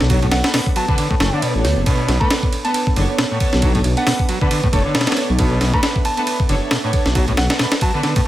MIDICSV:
0, 0, Header, 1, 7, 480
1, 0, Start_track
1, 0, Key_signature, 2, "minor"
1, 0, Tempo, 441176
1, 107, Time_signature, 4, 2, 24, 8
1, 9004, End_track
2, 0, Start_track
2, 0, Title_t, "Synth bell"
2, 0, Program_c, 0, 98
2, 345, Note_on_c, 0, 78, 92
2, 433, Note_off_c, 0, 78, 0
2, 480, Note_on_c, 0, 78, 77
2, 548, Note_off_c, 0, 78, 0
2, 835, Note_on_c, 0, 81, 95
2, 1509, Note_off_c, 0, 81, 0
2, 2396, Note_on_c, 0, 83, 95
2, 2582, Note_off_c, 0, 83, 0
2, 2878, Note_on_c, 0, 81, 93
2, 2947, Note_off_c, 0, 81, 0
2, 2984, Note_on_c, 0, 81, 73
2, 3073, Note_off_c, 0, 81, 0
2, 4325, Note_on_c, 0, 78, 94
2, 4390, Note_off_c, 0, 78, 0
2, 4427, Note_on_c, 0, 78, 78
2, 4514, Note_off_c, 0, 78, 0
2, 6246, Note_on_c, 0, 83, 97
2, 6427, Note_off_c, 0, 83, 0
2, 6586, Note_on_c, 0, 81, 92
2, 6674, Note_off_c, 0, 81, 0
2, 6727, Note_on_c, 0, 81, 82
2, 6791, Note_off_c, 0, 81, 0
2, 8028, Note_on_c, 0, 78, 90
2, 8115, Note_off_c, 0, 78, 0
2, 8169, Note_on_c, 0, 78, 78
2, 8232, Note_off_c, 0, 78, 0
2, 8512, Note_on_c, 0, 81, 90
2, 9004, Note_off_c, 0, 81, 0
2, 9004, End_track
3, 0, Start_track
3, 0, Title_t, "Ambient pad"
3, 0, Program_c, 1, 92
3, 0, Note_on_c, 1, 59, 82
3, 0, Note_on_c, 1, 62, 93
3, 0, Note_on_c, 1, 69, 76
3, 0, Note_on_c, 1, 73, 81
3, 2011, Note_off_c, 1, 62, 0
3, 2029, Note_on_c, 1, 76, 93
3, 9004, Note_off_c, 1, 59, 0
3, 9004, Note_off_c, 1, 69, 0
3, 9004, Note_off_c, 1, 73, 0
3, 9004, Note_off_c, 1, 76, 0
3, 9004, End_track
4, 0, Start_track
4, 0, Title_t, "String section"
4, 0, Program_c, 2, 48
4, 108, Note_on_c, 2, 62, 72
4, 108, Note_on_c, 2, 73, 87
4, 109, Note_on_c, 2, 59, 77
4, 110, Note_on_c, 2, 69, 69
4, 226, Note_off_c, 2, 59, 0
4, 226, Note_off_c, 2, 62, 0
4, 226, Note_off_c, 2, 73, 0
4, 227, Note_off_c, 2, 69, 0
4, 482, Note_on_c, 2, 59, 84
4, 483, Note_on_c, 2, 62, 80
4, 483, Note_on_c, 2, 71, 101
4, 484, Note_on_c, 2, 69, 80
4, 639, Note_off_c, 2, 59, 0
4, 640, Note_off_c, 2, 62, 0
4, 640, Note_off_c, 2, 69, 0
4, 640, Note_off_c, 2, 71, 0
4, 960, Note_on_c, 2, 62, 86
4, 961, Note_on_c, 2, 59, 96
4, 961, Note_on_c, 2, 69, 83
4, 962, Note_on_c, 2, 71, 109
4, 1051, Note_off_c, 2, 62, 0
4, 1052, Note_off_c, 2, 59, 0
4, 1052, Note_off_c, 2, 69, 0
4, 1053, Note_off_c, 2, 71, 0
4, 1443, Note_on_c, 2, 59, 75
4, 1443, Note_on_c, 2, 62, 71
4, 1443, Note_on_c, 2, 69, 67
4, 1443, Note_on_c, 2, 74, 83
4, 1533, Note_off_c, 2, 59, 0
4, 1533, Note_off_c, 2, 62, 0
4, 1533, Note_off_c, 2, 69, 0
4, 1533, Note_off_c, 2, 74, 0
4, 1684, Note_on_c, 2, 62, 76
4, 1684, Note_on_c, 2, 73, 93
4, 1686, Note_on_c, 2, 59, 83
4, 1686, Note_on_c, 2, 69, 72
4, 2002, Note_off_c, 2, 62, 0
4, 2002, Note_off_c, 2, 73, 0
4, 2003, Note_off_c, 2, 59, 0
4, 2003, Note_off_c, 2, 69, 0
4, 2025, Note_on_c, 2, 59, 77
4, 2025, Note_on_c, 2, 62, 74
4, 2026, Note_on_c, 2, 73, 87
4, 2027, Note_on_c, 2, 69, 66
4, 2144, Note_off_c, 2, 59, 0
4, 2144, Note_off_c, 2, 62, 0
4, 2145, Note_off_c, 2, 69, 0
4, 2145, Note_off_c, 2, 73, 0
4, 2403, Note_on_c, 2, 62, 78
4, 2404, Note_on_c, 2, 59, 84
4, 2404, Note_on_c, 2, 71, 94
4, 2405, Note_on_c, 2, 69, 77
4, 2560, Note_off_c, 2, 59, 0
4, 2560, Note_off_c, 2, 62, 0
4, 2560, Note_off_c, 2, 71, 0
4, 2561, Note_off_c, 2, 69, 0
4, 2882, Note_on_c, 2, 59, 94
4, 2882, Note_on_c, 2, 71, 100
4, 2883, Note_on_c, 2, 62, 86
4, 2884, Note_on_c, 2, 69, 86
4, 2972, Note_off_c, 2, 71, 0
4, 2973, Note_off_c, 2, 59, 0
4, 2973, Note_off_c, 2, 62, 0
4, 2974, Note_off_c, 2, 69, 0
4, 3224, Note_on_c, 2, 59, 88
4, 3224, Note_on_c, 2, 62, 76
4, 3225, Note_on_c, 2, 73, 94
4, 3226, Note_on_c, 2, 69, 78
4, 3402, Note_off_c, 2, 59, 0
4, 3402, Note_off_c, 2, 62, 0
4, 3402, Note_off_c, 2, 73, 0
4, 3403, Note_off_c, 2, 69, 0
4, 3599, Note_on_c, 2, 62, 84
4, 3599, Note_on_c, 2, 69, 88
4, 3600, Note_on_c, 2, 73, 101
4, 3601, Note_on_c, 2, 59, 95
4, 3757, Note_off_c, 2, 62, 0
4, 3758, Note_off_c, 2, 59, 0
4, 3758, Note_off_c, 2, 69, 0
4, 3758, Note_off_c, 2, 73, 0
4, 3944, Note_on_c, 2, 59, 75
4, 3944, Note_on_c, 2, 62, 69
4, 3944, Note_on_c, 2, 69, 70
4, 3945, Note_on_c, 2, 73, 87
4, 4064, Note_off_c, 2, 59, 0
4, 4064, Note_off_c, 2, 62, 0
4, 4064, Note_off_c, 2, 69, 0
4, 4064, Note_off_c, 2, 73, 0
4, 4321, Note_on_c, 2, 62, 81
4, 4322, Note_on_c, 2, 59, 92
4, 4322, Note_on_c, 2, 69, 79
4, 4323, Note_on_c, 2, 71, 95
4, 4479, Note_off_c, 2, 59, 0
4, 4479, Note_off_c, 2, 62, 0
4, 4479, Note_off_c, 2, 69, 0
4, 4480, Note_off_c, 2, 71, 0
4, 4798, Note_on_c, 2, 69, 83
4, 4798, Note_on_c, 2, 71, 110
4, 4799, Note_on_c, 2, 59, 98
4, 4799, Note_on_c, 2, 62, 83
4, 4890, Note_off_c, 2, 71, 0
4, 4891, Note_off_c, 2, 59, 0
4, 4891, Note_off_c, 2, 62, 0
4, 4891, Note_off_c, 2, 69, 0
4, 5143, Note_on_c, 2, 69, 82
4, 5145, Note_on_c, 2, 59, 88
4, 5145, Note_on_c, 2, 73, 93
4, 5146, Note_on_c, 2, 62, 79
4, 5322, Note_off_c, 2, 69, 0
4, 5322, Note_off_c, 2, 73, 0
4, 5323, Note_off_c, 2, 59, 0
4, 5323, Note_off_c, 2, 62, 0
4, 5518, Note_on_c, 2, 59, 98
4, 5518, Note_on_c, 2, 73, 106
4, 5519, Note_on_c, 2, 69, 90
4, 5520, Note_on_c, 2, 62, 85
4, 5677, Note_off_c, 2, 59, 0
4, 5677, Note_off_c, 2, 73, 0
4, 5678, Note_off_c, 2, 62, 0
4, 5678, Note_off_c, 2, 69, 0
4, 5864, Note_on_c, 2, 59, 76
4, 5864, Note_on_c, 2, 69, 71
4, 5865, Note_on_c, 2, 62, 72
4, 5865, Note_on_c, 2, 73, 85
4, 5984, Note_off_c, 2, 59, 0
4, 5984, Note_off_c, 2, 62, 0
4, 5984, Note_off_c, 2, 69, 0
4, 5984, Note_off_c, 2, 73, 0
4, 6241, Note_on_c, 2, 69, 82
4, 6242, Note_on_c, 2, 59, 83
4, 6242, Note_on_c, 2, 62, 80
4, 6243, Note_on_c, 2, 71, 96
4, 6399, Note_off_c, 2, 59, 0
4, 6399, Note_off_c, 2, 62, 0
4, 6399, Note_off_c, 2, 69, 0
4, 6400, Note_off_c, 2, 71, 0
4, 6720, Note_on_c, 2, 69, 88
4, 6721, Note_on_c, 2, 62, 86
4, 6721, Note_on_c, 2, 71, 106
4, 6722, Note_on_c, 2, 59, 101
4, 6812, Note_off_c, 2, 62, 0
4, 6812, Note_off_c, 2, 69, 0
4, 6812, Note_off_c, 2, 71, 0
4, 6813, Note_off_c, 2, 59, 0
4, 7062, Note_on_c, 2, 73, 99
4, 7063, Note_on_c, 2, 69, 84
4, 7064, Note_on_c, 2, 59, 86
4, 7064, Note_on_c, 2, 62, 79
4, 7241, Note_off_c, 2, 73, 0
4, 7242, Note_off_c, 2, 59, 0
4, 7242, Note_off_c, 2, 62, 0
4, 7242, Note_off_c, 2, 69, 0
4, 7440, Note_on_c, 2, 59, 101
4, 7441, Note_on_c, 2, 62, 87
4, 7441, Note_on_c, 2, 69, 89
4, 7442, Note_on_c, 2, 73, 107
4, 7598, Note_off_c, 2, 59, 0
4, 7598, Note_off_c, 2, 62, 0
4, 7598, Note_off_c, 2, 69, 0
4, 7599, Note_off_c, 2, 73, 0
4, 7784, Note_on_c, 2, 59, 80
4, 7784, Note_on_c, 2, 62, 69
4, 7785, Note_on_c, 2, 73, 84
4, 7786, Note_on_c, 2, 69, 70
4, 7903, Note_off_c, 2, 59, 0
4, 7904, Note_off_c, 2, 62, 0
4, 7904, Note_off_c, 2, 73, 0
4, 7905, Note_off_c, 2, 69, 0
4, 8160, Note_on_c, 2, 59, 83
4, 8161, Note_on_c, 2, 62, 82
4, 8161, Note_on_c, 2, 69, 84
4, 8161, Note_on_c, 2, 71, 98
4, 8318, Note_off_c, 2, 59, 0
4, 8319, Note_off_c, 2, 62, 0
4, 8319, Note_off_c, 2, 69, 0
4, 8319, Note_off_c, 2, 71, 0
4, 8639, Note_on_c, 2, 69, 87
4, 8640, Note_on_c, 2, 62, 90
4, 8640, Note_on_c, 2, 71, 109
4, 8642, Note_on_c, 2, 59, 95
4, 8731, Note_off_c, 2, 62, 0
4, 8731, Note_off_c, 2, 69, 0
4, 8732, Note_off_c, 2, 59, 0
4, 8732, Note_off_c, 2, 71, 0
4, 9004, End_track
5, 0, Start_track
5, 0, Title_t, "Transistor combo organ"
5, 0, Program_c, 3, 18
5, 105, Note_on_c, 3, 54, 87
5, 215, Note_off_c, 3, 54, 0
5, 243, Note_on_c, 3, 45, 108
5, 293, Note_off_c, 3, 45, 0
5, 586, Note_on_c, 3, 47, 84
5, 652, Note_off_c, 3, 47, 0
5, 825, Note_on_c, 3, 54, 79
5, 935, Note_off_c, 3, 54, 0
5, 960, Note_on_c, 3, 50, 75
5, 1044, Note_off_c, 3, 50, 0
5, 1066, Note_on_c, 3, 50, 81
5, 1176, Note_off_c, 3, 50, 0
5, 1202, Note_on_c, 3, 45, 98
5, 1252, Note_off_c, 3, 45, 0
5, 1309, Note_on_c, 3, 57, 77
5, 1417, Note_off_c, 3, 57, 0
5, 1445, Note_on_c, 3, 50, 77
5, 1543, Note_off_c, 3, 50, 0
5, 1547, Note_on_c, 3, 47, 80
5, 1676, Note_off_c, 3, 47, 0
5, 2026, Note_on_c, 3, 47, 84
5, 2389, Note_off_c, 3, 47, 0
5, 2404, Note_on_c, 3, 57, 83
5, 2487, Note_off_c, 3, 57, 0
5, 3227, Note_on_c, 3, 50, 77
5, 3292, Note_off_c, 3, 50, 0
5, 3467, Note_on_c, 3, 47, 80
5, 3532, Note_off_c, 3, 47, 0
5, 3603, Note_on_c, 3, 45, 78
5, 3686, Note_off_c, 3, 45, 0
5, 3948, Note_on_c, 3, 54, 84
5, 4057, Note_off_c, 3, 54, 0
5, 4079, Note_on_c, 3, 45, 108
5, 4131, Note_off_c, 3, 45, 0
5, 4423, Note_on_c, 3, 47, 86
5, 4491, Note_off_c, 3, 47, 0
5, 4667, Note_on_c, 3, 54, 77
5, 4776, Note_off_c, 3, 54, 0
5, 4802, Note_on_c, 3, 50, 80
5, 4885, Note_off_c, 3, 50, 0
5, 4908, Note_on_c, 3, 50, 80
5, 5016, Note_off_c, 3, 50, 0
5, 5043, Note_on_c, 3, 45, 98
5, 5093, Note_off_c, 3, 45, 0
5, 5146, Note_on_c, 3, 57, 80
5, 5255, Note_off_c, 3, 57, 0
5, 5283, Note_on_c, 3, 50, 77
5, 5382, Note_off_c, 3, 50, 0
5, 5383, Note_on_c, 3, 47, 80
5, 5514, Note_off_c, 3, 47, 0
5, 5867, Note_on_c, 3, 47, 84
5, 6229, Note_off_c, 3, 47, 0
5, 6239, Note_on_c, 3, 57, 82
5, 6324, Note_off_c, 3, 57, 0
5, 7065, Note_on_c, 3, 50, 77
5, 7131, Note_off_c, 3, 50, 0
5, 7302, Note_on_c, 3, 47, 83
5, 7370, Note_off_c, 3, 47, 0
5, 7441, Note_on_c, 3, 45, 77
5, 7525, Note_off_c, 3, 45, 0
5, 7781, Note_on_c, 3, 54, 86
5, 7893, Note_off_c, 3, 54, 0
5, 7921, Note_on_c, 3, 45, 112
5, 7972, Note_off_c, 3, 45, 0
5, 8264, Note_on_c, 3, 47, 83
5, 8331, Note_off_c, 3, 47, 0
5, 8508, Note_on_c, 3, 54, 78
5, 8616, Note_off_c, 3, 54, 0
5, 8642, Note_on_c, 3, 50, 77
5, 8725, Note_off_c, 3, 50, 0
5, 8750, Note_on_c, 3, 50, 81
5, 8858, Note_off_c, 3, 50, 0
5, 8883, Note_on_c, 3, 45, 103
5, 8933, Note_off_c, 3, 45, 0
5, 9004, End_track
6, 0, Start_track
6, 0, Title_t, "Detuned saw bass"
6, 0, Program_c, 4, 39
6, 11, Note_on_c, 4, 35, 94
6, 320, Note_off_c, 4, 35, 0
6, 352, Note_on_c, 4, 35, 106
6, 460, Note_off_c, 4, 35, 0
6, 1310, Note_on_c, 4, 30, 88
6, 1419, Note_off_c, 4, 30, 0
6, 1687, Note_on_c, 4, 33, 91
6, 1789, Note_on_c, 4, 38, 79
6, 1805, Note_off_c, 4, 33, 0
6, 1899, Note_off_c, 4, 38, 0
6, 1924, Note_on_c, 4, 30, 89
6, 2008, Note_off_c, 4, 30, 0
6, 2263, Note_on_c, 4, 35, 106
6, 2376, Note_off_c, 4, 35, 0
6, 3224, Note_on_c, 4, 30, 88
6, 3336, Note_off_c, 4, 30, 0
6, 3846, Note_on_c, 4, 35, 91
6, 4157, Note_off_c, 4, 35, 0
6, 4186, Note_on_c, 4, 35, 104
6, 4297, Note_off_c, 4, 35, 0
6, 5147, Note_on_c, 4, 30, 82
6, 5257, Note_off_c, 4, 30, 0
6, 5761, Note_on_c, 4, 35, 90
6, 6075, Note_off_c, 4, 35, 0
6, 6109, Note_on_c, 4, 35, 105
6, 6218, Note_off_c, 4, 35, 0
6, 7069, Note_on_c, 4, 30, 86
6, 7179, Note_off_c, 4, 30, 0
6, 7683, Note_on_c, 4, 35, 92
6, 7996, Note_off_c, 4, 35, 0
6, 8028, Note_on_c, 4, 35, 106
6, 8138, Note_off_c, 4, 35, 0
6, 9004, End_track
7, 0, Start_track
7, 0, Title_t, "Drums"
7, 6, Note_on_c, 9, 38, 62
7, 108, Note_on_c, 9, 36, 111
7, 108, Note_on_c, 9, 51, 90
7, 114, Note_off_c, 9, 38, 0
7, 216, Note_off_c, 9, 51, 0
7, 217, Note_off_c, 9, 36, 0
7, 243, Note_on_c, 9, 51, 46
7, 343, Note_off_c, 9, 51, 0
7, 343, Note_on_c, 9, 38, 108
7, 343, Note_on_c, 9, 51, 81
7, 452, Note_off_c, 9, 38, 0
7, 452, Note_off_c, 9, 51, 0
7, 480, Note_on_c, 9, 38, 110
7, 480, Note_on_c, 9, 51, 84
7, 586, Note_off_c, 9, 38, 0
7, 586, Note_on_c, 9, 38, 120
7, 586, Note_on_c, 9, 46, 83
7, 589, Note_off_c, 9, 51, 0
7, 695, Note_off_c, 9, 38, 0
7, 695, Note_off_c, 9, 46, 0
7, 723, Note_on_c, 9, 36, 98
7, 826, Note_on_c, 9, 51, 76
7, 832, Note_off_c, 9, 36, 0
7, 934, Note_off_c, 9, 51, 0
7, 963, Note_on_c, 9, 36, 103
7, 1065, Note_on_c, 9, 51, 94
7, 1072, Note_off_c, 9, 36, 0
7, 1174, Note_off_c, 9, 51, 0
7, 1204, Note_on_c, 9, 36, 99
7, 1308, Note_on_c, 9, 38, 112
7, 1308, Note_on_c, 9, 51, 72
7, 1313, Note_off_c, 9, 36, 0
7, 1417, Note_off_c, 9, 38, 0
7, 1417, Note_off_c, 9, 51, 0
7, 1549, Note_on_c, 9, 51, 85
7, 1657, Note_off_c, 9, 51, 0
7, 1791, Note_on_c, 9, 38, 54
7, 1791, Note_on_c, 9, 51, 74
7, 1900, Note_off_c, 9, 38, 0
7, 1900, Note_off_c, 9, 51, 0
7, 2027, Note_on_c, 9, 51, 86
7, 2028, Note_on_c, 9, 36, 109
7, 2136, Note_off_c, 9, 51, 0
7, 2137, Note_off_c, 9, 36, 0
7, 2268, Note_on_c, 9, 38, 55
7, 2268, Note_on_c, 9, 51, 73
7, 2377, Note_off_c, 9, 38, 0
7, 2377, Note_off_c, 9, 51, 0
7, 2404, Note_on_c, 9, 36, 96
7, 2508, Note_on_c, 9, 38, 127
7, 2508, Note_on_c, 9, 51, 91
7, 2513, Note_off_c, 9, 36, 0
7, 2617, Note_off_c, 9, 38, 0
7, 2617, Note_off_c, 9, 51, 0
7, 2643, Note_on_c, 9, 36, 98
7, 2748, Note_on_c, 9, 51, 74
7, 2752, Note_off_c, 9, 36, 0
7, 2857, Note_off_c, 9, 51, 0
7, 2880, Note_on_c, 9, 51, 46
7, 2985, Note_off_c, 9, 51, 0
7, 2985, Note_on_c, 9, 51, 98
7, 3094, Note_off_c, 9, 51, 0
7, 3122, Note_on_c, 9, 36, 99
7, 3225, Note_on_c, 9, 51, 69
7, 3230, Note_off_c, 9, 36, 0
7, 3334, Note_off_c, 9, 51, 0
7, 3465, Note_on_c, 9, 38, 116
7, 3465, Note_on_c, 9, 51, 90
7, 3574, Note_off_c, 9, 38, 0
7, 3574, Note_off_c, 9, 51, 0
7, 3704, Note_on_c, 9, 51, 73
7, 3705, Note_on_c, 9, 36, 99
7, 3812, Note_off_c, 9, 51, 0
7, 3814, Note_off_c, 9, 36, 0
7, 3838, Note_on_c, 9, 38, 58
7, 3939, Note_on_c, 9, 51, 89
7, 3944, Note_on_c, 9, 36, 116
7, 3947, Note_off_c, 9, 38, 0
7, 4048, Note_off_c, 9, 51, 0
7, 4053, Note_off_c, 9, 36, 0
7, 4078, Note_on_c, 9, 51, 45
7, 4181, Note_off_c, 9, 51, 0
7, 4181, Note_on_c, 9, 51, 69
7, 4290, Note_off_c, 9, 51, 0
7, 4320, Note_on_c, 9, 51, 46
7, 4425, Note_on_c, 9, 38, 121
7, 4425, Note_on_c, 9, 46, 82
7, 4429, Note_off_c, 9, 51, 0
7, 4534, Note_off_c, 9, 38, 0
7, 4534, Note_off_c, 9, 46, 0
7, 4562, Note_on_c, 9, 36, 95
7, 4664, Note_on_c, 9, 51, 74
7, 4671, Note_off_c, 9, 36, 0
7, 4773, Note_off_c, 9, 51, 0
7, 4803, Note_on_c, 9, 36, 98
7, 4906, Note_on_c, 9, 51, 94
7, 4912, Note_off_c, 9, 36, 0
7, 5014, Note_off_c, 9, 51, 0
7, 5043, Note_on_c, 9, 36, 96
7, 5146, Note_off_c, 9, 36, 0
7, 5146, Note_on_c, 9, 36, 98
7, 5146, Note_on_c, 9, 51, 77
7, 5255, Note_off_c, 9, 36, 0
7, 5255, Note_off_c, 9, 51, 0
7, 5383, Note_on_c, 9, 38, 89
7, 5383, Note_on_c, 9, 51, 66
7, 5450, Note_off_c, 9, 38, 0
7, 5450, Note_off_c, 9, 51, 0
7, 5450, Note_on_c, 9, 38, 88
7, 5450, Note_on_c, 9, 51, 67
7, 5518, Note_off_c, 9, 38, 0
7, 5518, Note_off_c, 9, 51, 0
7, 5518, Note_on_c, 9, 38, 94
7, 5518, Note_on_c, 9, 51, 72
7, 5570, Note_off_c, 9, 38, 0
7, 5570, Note_off_c, 9, 51, 0
7, 5570, Note_on_c, 9, 38, 93
7, 5570, Note_on_c, 9, 51, 74
7, 5622, Note_off_c, 9, 38, 0
7, 5622, Note_off_c, 9, 51, 0
7, 5622, Note_on_c, 9, 38, 53
7, 5622, Note_on_c, 9, 51, 74
7, 5731, Note_off_c, 9, 38, 0
7, 5731, Note_off_c, 9, 51, 0
7, 5860, Note_on_c, 9, 51, 90
7, 5865, Note_on_c, 9, 36, 108
7, 5969, Note_off_c, 9, 51, 0
7, 5974, Note_off_c, 9, 36, 0
7, 6103, Note_on_c, 9, 38, 56
7, 6103, Note_on_c, 9, 51, 73
7, 6212, Note_off_c, 9, 38, 0
7, 6212, Note_off_c, 9, 51, 0
7, 6241, Note_on_c, 9, 36, 99
7, 6342, Note_on_c, 9, 38, 115
7, 6342, Note_on_c, 9, 51, 94
7, 6350, Note_off_c, 9, 36, 0
7, 6450, Note_off_c, 9, 38, 0
7, 6450, Note_off_c, 9, 51, 0
7, 6481, Note_on_c, 9, 36, 96
7, 6582, Note_on_c, 9, 51, 71
7, 6590, Note_off_c, 9, 36, 0
7, 6691, Note_off_c, 9, 51, 0
7, 6717, Note_on_c, 9, 51, 45
7, 6821, Note_off_c, 9, 51, 0
7, 6821, Note_on_c, 9, 51, 89
7, 6929, Note_off_c, 9, 51, 0
7, 6961, Note_on_c, 9, 36, 95
7, 7063, Note_on_c, 9, 51, 68
7, 7070, Note_off_c, 9, 36, 0
7, 7172, Note_off_c, 9, 51, 0
7, 7300, Note_on_c, 9, 38, 119
7, 7300, Note_on_c, 9, 51, 87
7, 7409, Note_off_c, 9, 38, 0
7, 7409, Note_off_c, 9, 51, 0
7, 7541, Note_on_c, 9, 51, 71
7, 7544, Note_on_c, 9, 36, 107
7, 7650, Note_off_c, 9, 51, 0
7, 7653, Note_off_c, 9, 36, 0
7, 7678, Note_on_c, 9, 38, 63
7, 7782, Note_on_c, 9, 51, 91
7, 7784, Note_on_c, 9, 36, 112
7, 7787, Note_off_c, 9, 38, 0
7, 7891, Note_off_c, 9, 51, 0
7, 7893, Note_off_c, 9, 36, 0
7, 7918, Note_on_c, 9, 51, 47
7, 8022, Note_off_c, 9, 51, 0
7, 8022, Note_on_c, 9, 38, 105
7, 8022, Note_on_c, 9, 51, 80
7, 8131, Note_off_c, 9, 38, 0
7, 8131, Note_off_c, 9, 51, 0
7, 8160, Note_on_c, 9, 38, 106
7, 8160, Note_on_c, 9, 51, 80
7, 8262, Note_off_c, 9, 38, 0
7, 8262, Note_off_c, 9, 51, 0
7, 8262, Note_on_c, 9, 38, 109
7, 8262, Note_on_c, 9, 51, 86
7, 8371, Note_off_c, 9, 38, 0
7, 8371, Note_off_c, 9, 51, 0
7, 8396, Note_on_c, 9, 38, 106
7, 8396, Note_on_c, 9, 51, 83
7, 8499, Note_off_c, 9, 51, 0
7, 8499, Note_on_c, 9, 51, 88
7, 8503, Note_on_c, 9, 36, 103
7, 8504, Note_off_c, 9, 38, 0
7, 8608, Note_off_c, 9, 51, 0
7, 8612, Note_off_c, 9, 36, 0
7, 8741, Note_on_c, 9, 38, 52
7, 8741, Note_on_c, 9, 51, 66
7, 8850, Note_off_c, 9, 38, 0
7, 8850, Note_off_c, 9, 51, 0
7, 8879, Note_on_c, 9, 51, 82
7, 8880, Note_on_c, 9, 36, 102
7, 8987, Note_off_c, 9, 51, 0
7, 8989, Note_off_c, 9, 36, 0
7, 9004, End_track
0, 0, End_of_file